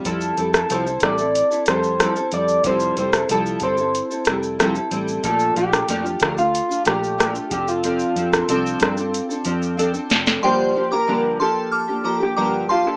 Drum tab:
HH |x-x-x-x-x-x-x-x-|x-x-x-x-x-x-x-x-|x-x-x-x-x-x-x-x-|x-x-x-x-x-x-x-x-|
SH |xxxxxxxxxxxxxxxx|xxxxxxxxxxxxxxxx|xxxxxxxxxxxxxxxx|xxxxxxxxxxxxxxxx|
SD |---r--r---r-r---|---r------r-r---|---r--r---r-r---|---r--r-------oo|
BD |o-----o---------|o-----o---------|o-----o-------o-|---o--o---------|

HH |----------------|
SH |----------------|
SD |----------------|
BD |----------------|